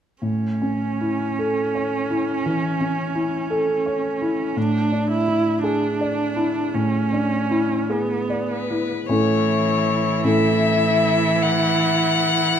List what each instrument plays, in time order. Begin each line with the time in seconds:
0.22 grand piano A2, viola C#4
0.62 grand piano C#4
1.01 grand piano E4
1.39 grand piano A4
1.75 grand piano C#5
2.10 grand piano E4
2.46 grand piano E3
2.81 grand piano C#4
3.15 grand piano E4
3.50 grand piano A4
3.86 grand piano C#5
4.22 grand piano E4
4.56 grand piano A2, viola D4
4.92 grand piano D4
5.10 viola E4
5.28 grand piano E4
5.64 viola D4, grand piano G#4
6.01 grand piano D5
6.36 grand piano E4
6.74 grand piano A2, viola C#4
7.13 grand piano D4
7.51 grand piano E4
7.90 viola B3, grand piano G#4
8.30 grand piano D5
8.51 violin B4
8.71 grand piano E4
9.09 grand piano A2 C#4 E4 A4, cello E3, viola E4, violin C#5
10.24 grand piano A2 C#4 E4 A4, violin E5
11.42 violin F#5